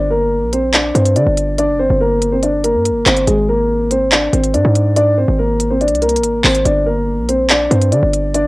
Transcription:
0.00 0.44 G1 loud
0.10 0.51 A#3 medium
0.10 0.50 A#4 medium
0.42 0.92 A#1 loud
0.53 0.72 C4 medium
0.53 0.72 C5 medium
0.53 closed hi-hat medium
0.74 0.93 D4 medium
0.74 0.93 D5 medium
0.74 clap loud
0.74 closed hi-hat medium
0.95 1.18 G2 loud
0.95 1.14 C4 medium
0.95 1.14 C5 medium
0.95 closed hi-hat medium
1.06 closed hi-hat medium
1.16 1.26 D3 loud
1.16 1.56 D4 medium
1.16 1.56 D5 medium
1.16 closed hi-hat medium
1.27 1.70 G1 loud
1.37 closed hi-hat medium
1.58 1.78 D4 medium
1.58 1.77 D5 loud
1.58 closed hi-hat medium
1.69 1.81 F1 loud
1.79 1.89 G1 loud
1.79 1.99 C4 medium
1.79 1.98 C5 medium
1.90 2.76 G1 loud
2.01 2.31 A#3 medium
2.01 2.30 A#4 medium
2.22 closed hi-hat medium
2.32 2.42 C4 medium
2.32 2.42 C5 medium
2.43 2.62 D4 medium
2.43 2.62 D5 medium
2.43 closed hi-hat medium
2.64 3.04 A#3 medium
2.64 3.04 A#4 medium
2.64 closed hi-hat medium
2.74 2.92 G2 loud
2.85 closed hi-hat medium
2.90 3.05 G1 loud
3.06 3.26 G1 loud
3.06 3.26 C4 medium
3.06 3.25 C5 medium
3.06 clap loud
3.06 closed hi-hat medium
3.17 closed hi-hat medium
3.27 4.29 G#1 loud
3.27 3.46 G#3 medium
3.27 3.46 G#4 medium
3.27 closed hi-hat medium
3.48 3.89 A#3 medium
3.48 3.88 A#4 medium
3.91 4.10 C4 medium
3.91 4.10 C5 medium
3.91 closed hi-hat medium
4.12 4.31 D4 medium
4.12 4.31 D5 medium
4.12 clap loud
4.12 closed hi-hat medium
4.33 4.56 G#1 loud
4.33 4.52 C4 medium
4.33 4.52 C5 medium
4.33 closed hi-hat medium
4.44 closed hi-hat medium
4.54 4.64 G#2 loud
4.54 4.94 D4 medium
4.54 4.94 D5 medium
4.54 closed hi-hat medium
4.65 5.26 G#2 loud
4.75 closed hi-hat medium
4.96 5.16 D4 medium
4.96 5.15 D5 loud
4.96 closed hi-hat medium
5.18 5.37 C4 medium
5.18 5.36 C5 medium
5.28 5.93 G#1 loud
5.39 5.69 A#3 medium
5.39 5.69 A#4 medium
5.60 closed hi-hat medium
5.70 5.80 C4 medium
5.70 5.80 C5 medium
5.81 6.00 D4 medium
5.81 6.00 D5 medium
5.81 closed hi-hat soft
5.88 6.19 C2 loud
5.88 closed hi-hat soft
5.95 closed hi-hat soft
6.02 6.42 A#3 medium
6.02 6.42 A#4 medium
6.02 closed hi-hat soft
6.09 closed hi-hat medium
6.16 6.43 G#1 loud
6.16 closed hi-hat medium
6.23 closed hi-hat medium
6.44 6.65 G#1 loud
6.44 6.64 C4 medium
6.44 6.63 C5 medium
6.44 clap loud
6.44 open hi-hat medium
6.55 closed hi-hat medium
6.65 7.20 G1 loud
6.65 6.85 D4 medium
6.65 6.84 D5 medium
6.65 closed hi-hat medium
6.86 7.27 A#3 medium
6.86 7.26 A#4 medium
7.18 7.68 A#1 loud
7.29 7.48 C4 medium
7.29 7.48 C5 medium
7.29 closed hi-hat medium
7.50 7.69 D4 medium
7.50 7.69 D5 medium
7.50 clap loud
7.50 closed hi-hat medium
7.71 7.94 G2 loud
7.71 7.90 C4 medium
7.71 7.90 C5 medium
7.71 closed hi-hat medium
7.82 closed hi-hat medium
7.92 8.02 D3 loud
7.92 8.32 D4 medium
7.92 8.32 D5 medium
7.92 closed hi-hat medium
8.03 8.46 G1 loud
8.13 closed hi-hat medium
8.34 8.47 D4 medium
8.34 8.47 D5 loud
8.34 closed hi-hat medium

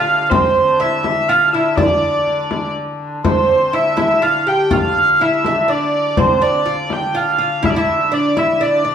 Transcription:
0.00 3.24 D3 medium
0.00 0.28 F4 medium
0.00 0.31 F5 medium
0.30 0.79 C4 medium
0.30 0.80 C5 loud
0.30 frame drum medium
0.56 frame drum soft
0.80 1.29 E4 medium
0.80 1.29 E5 medium
0.80 frame drum soft
1.04 frame drum medium
1.29 1.54 F4 medium
1.29 1.48 F5 medium
1.48 1.54 F5 medium
1.53 1.79 E4 medium
1.53 1.78 E5 medium
1.76 2.72 D4 medium
1.76 2.71 D5 medium
1.76 frame drum medium
2.02 frame drum soft
2.27 frame drum soft
2.51 frame drum medium
2.76 frame drum soft
3.24 8.95 D3 medium
3.24 3.73 C4 medium
3.24 3.74 C5 medium
3.24 frame drum medium
3.49 frame drum soft
3.73 3.96 E4 medium
3.73 4.23 E5 medium
3.73 frame drum soft
3.97 4.22 E4 medium
3.97 frame drum medium
4.22 4.46 F4 medium
4.22 4.48 F5 medium
4.47 4.70 G4 medium
4.47 4.73 G5 medium
4.71 5.21 F4 medium
4.71 5.22 F5 loud
4.71 frame drum medium
4.95 frame drum soft
5.20 5.45 E4 medium
5.20 5.70 E5 medium
5.20 frame drum soft
5.45 5.68 E4 medium
5.45 frame drum medium
5.68 6.17 D4 medium
5.68 6.19 D5 medium
6.17 6.41 C4 medium
6.17 6.43 C5 medium
6.17 frame drum medium
6.42 6.65 D4 medium
6.42 6.93 D5 medium
6.42 frame drum soft
6.66 7.13 F4 medium
6.66 frame drum soft
6.90 7.17 G5 medium
6.90 frame drum medium
7.15 7.37 F4 medium
7.15 7.65 F5 medium
7.39 7.62 F4 medium
7.63 7.75 E4 medium
7.63 7.71 E5 medium
7.63 frame drum medium
7.70 7.79 D5 medium
7.76 8.11 E4 medium
7.76 8.14 E5 medium
8.12 8.36 D4 medium
8.12 8.39 D5 medium
8.37 8.60 E4 medium
8.37 8.63 E5 medium
8.37 frame drum medium
8.61 8.83 D4 medium
8.61 8.88 D5 medium
8.84 8.95 D4 medium
8.84 8.95 D5 medium
8.84 frame drum soft

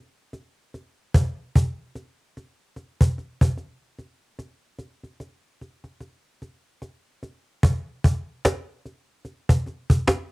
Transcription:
0.33 cajon slap soft
0.74 cajon slap soft
1.14 cajon bass loud
1.56 cajon bass medium
1.95 cajon slap soft
2.37 cajon slap soft
2.76 cajon slap soft
3.01 cajon bass medium
3.18 cajon slap soft
3.41 cajon bass medium
3.57 cajon slap soft
3.99 cajon slap soft
4.39 cajon slap medium
4.79 cajon slap soft
5.03 cajon slap soft
5.20 cajon slap soft
5.61 cajon slap soft
5.84 cajon slap soft
6.00 cajon slap soft
6.42 cajon slap soft
6.82 cajon slap soft
7.23 cajon slap soft
7.63 cajon bass loud
8.04 cajon bass loud
8.45 cajon slap medium
8.45 cajon slap loud
8.86 cajon slap soft
9.25 cajon slap soft
9.49 cajon bass medium
9.66 cajon slap soft
9.90 cajon bass medium
10.08 cajon slap medium
10.08 cajon slap loud

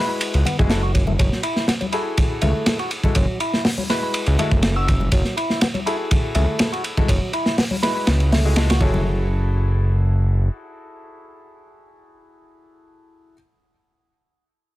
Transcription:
0.00 0.43 G#3 medium
0.00 0.43 E4 medium
0.00 0.43 F#4 medium
0.00 0.43 B4 medium
0.09 0.17 B5 medium
0.21 ride medium
0.34 0.44 C#2 loud
0.34 ride soft
0.45 0.57 B3 medium
0.45 ride medium
0.45 high conga medium
0.45 low conga medium
0.59 1.17 F#1 medium
0.59 0.67 G#3 medium
0.59 0.67 E4 medium
0.59 0.67 F#4 medium
0.59 0.67 G#4 medium
0.59 kick loud
0.70 0.80 G#3 medium
0.70 0.80 E4 medium
0.70 0.80 F#4 medium
0.70 0.80 A4 loud
0.70 snare loud
0.70 ride medium
0.83 0.92 F#4 medium
0.94 1.04 F#3 medium
0.94 kick medium
0.94 ride medium
1.07 1.13 A3 medium
1.07 high conga loud
1.07 low conga medium
1.19 1.30 F#1 loud
1.19 1.42 F#3 medium
1.19 kick loud
1.19 ride medium
1.32 snare soft
1.43 1.67 E4 loud
1.43 ride medium
1.56 snare soft
1.68 1.74 B3 medium
1.68 snare loud
1.68 ride medium
1.81 1.86 F#3 medium
1.81 ride soft
1.81 high conga medium
1.92 2.03 E4 medium
1.92 3.01 E4 medium
1.92 3.01 F#4 medium
1.92 3.01 G#4 medium
1.92 3.01 A4 loud
1.92 ride medium
2.18 kick loud
2.18 ride medium
2.41 2.53 C#2 medium
2.41 2.78 A3 loud
2.41 ride medium
2.41 high conga medium
2.41 low conga medium
2.66 snare loud
2.66 ride medium
2.79 2.91 F#4 medium
2.79 ride soft
2.91 ride medium
3.04 3.13 G#3 medium
3.04 3.13 E4 medium
3.04 3.13 F#4 medium
3.04 3.13 A4 loud
3.04 kick medium
3.04 high conga loud
3.04 low conga medium
3.15 3.27 F#1 loud
3.15 3.39 F#3 medium
3.15 kick loud
3.15 ride medium
3.40 3.64 E4 loud
3.40 ride medium
3.53 snare medium
3.65 3.71 B3 medium
3.65 snare loud
3.65 open hi-hat medium
3.78 3.83 F#3 medium
3.78 high conga loud
3.90 4.36 G#3 medium
3.90 4.00 E4 medium
3.90 4.36 E4 medium
3.90 4.36 F#4 medium
3.90 4.36 B4 loud
3.90 3.98 B5 medium
3.90 snare medium
3.90 ride medium
4.03 4.10 B5 medium
4.14 ride medium
4.26 4.37 C#2 loud
4.26 ride soft
4.38 4.49 G#3 medium
4.38 4.75 A3 loud
4.38 4.49 E4 medium
4.38 4.49 F#4 medium
4.38 4.49 A4 loud
4.38 ride medium
4.38 high conga medium
4.38 low conga medium
4.51 5.10 F#1 medium
4.51 kick loud
4.63 snare loud
4.63 ride medium
4.76 4.87 F#4 medium
4.76 4.84 E6 medium
4.88 4.96 E6 medium
4.88 kick medium
4.88 ride medium
5.00 high conga medium
5.00 low conga medium
5.12 5.23 F#1 loud
5.12 5.36 F#3 medium
5.12 kick loud
5.12 ride medium
5.25 snare soft
5.37 5.61 E4 loud
5.37 ride medium
5.50 snare soft
5.61 5.68 B3 medium
5.61 snare loud
5.61 ride loud
5.74 5.80 F#3 medium
5.74 ride soft
5.74 high conga medium
5.86 5.96 E4 medium
5.86 6.95 E4 medium
5.86 6.95 F#4 medium
5.86 6.95 G#4 medium
5.86 6.95 A4 medium
5.86 ride medium
6.11 kick loud
6.11 ride medium
6.35 6.46 C#2 medium
6.35 6.72 A3 loud
6.35 ride medium
6.35 high conga medium
6.35 low conga medium
6.59 snare loud
6.59 ride medium
6.73 6.84 F#4 medium
6.73 ride soft
6.84 ride medium
6.97 7.06 G#3 medium
6.97 7.06 E4 medium
6.97 7.06 F#4 medium
6.97 7.06 A4 medium
6.97 kick loud
6.97 high conga medium
6.97 low conga medium
7.08 7.20 F#1 loud
7.08 7.32 F#3 medium
7.08 kick loud
7.08 ride loud
7.33 7.57 E4 loud
7.33 ride medium
7.46 snare medium
7.58 7.65 B3 medium
7.58 snare loud
7.58 open hi-hat medium
7.71 7.77 F#3 medium
7.71 high conga medium
7.83 8.29 G#3 medium
7.83 7.93 E4 medium
7.83 8.29 E4 medium
7.83 8.29 F#4 medium
7.83 8.29 B4 loud
7.83 7.91 B5 medium
7.83 snare medium
7.83 ride medium
7.95 8.03 B5 medium
8.07 8.80 C#2 medium
8.07 snare loud
8.07 ride medium
8.20 ride soft
8.32 8.68 A3 loud
8.32 snare loud
8.32 open hi-hat medium
8.32 high conga medium
8.32 low conga medium
8.45 8.54 G#3 medium
8.45 8.54 E4 medium
8.45 8.54 F#4 medium
8.45 8.54 G#4 loud
8.56 8.67 G#3 loud
8.56 8.67 E4 medium
8.56 8.67 F#4 medium
8.56 8.67 A4 loud
8.56 snare loud
8.56 ride medium
8.70 8.81 F#4 medium
8.70 snare loud
8.70 ride medium
8.81 10.49 F#1 loud
8.81 9.27 F#3 loud
8.81 13.33 E4 medium
8.81 13.34 F#4 medium
8.81 13.34 G#4 medium
8.81 13.34 A4 loud
8.81 kick loud
8.94 high conga loud
8.94 low conga medium

